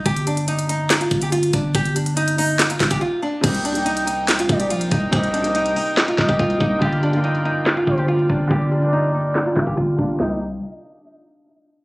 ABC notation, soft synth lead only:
X:1
M:4/4
L:1/8
Q:1/4=142
K:Cm
V:1 name="Soft synth lead"
z8 | z8 | g4- g d z2 | e4- e e3 |
f4- f c z2 | d4- d f3 | e z6 z |]